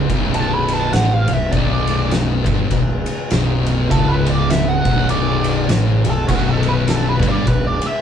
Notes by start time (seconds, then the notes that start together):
0.10 B0 B1, kick, ride
0.34 A5, ride
0.54 B5
0.68 ride
0.73 A5
0.93 A1 A2 F#5, snare, ride
1.13 F5
1.28 B0 B1, ride
1.33 E5
1.52 B0 B1 D5, kick, ride
1.87 ride
2.11 snare, ride
2.46 G1 G2, kick, ride
2.71 B0 B1, kick, ride
3.06 ride
3.31 B0 B1, snare, ride
3.66 ride
3.91 C#1 C#2 A4, kick, ride
4.08 B4
4.26 D5, ride
4.50 E5, snare, ride
4.69 F#5
4.85 B0 B1, kick, ride
5.09 D5, ride
5.44 ride
5.69 A1 A2, snare, ride
6.04 B0 B1, ride
6.10 A4
6.28 B0 B1 F#4, kick, crash
6.51 A4
6.63 ride
6.69 B4
6.88 A4, snare, ride
7.09 B4
7.23 G1 G2, kick, ride
7.29 D5
7.47 B0 B1 B4, kick, ride
7.67 D5
7.82 ride
7.86 E5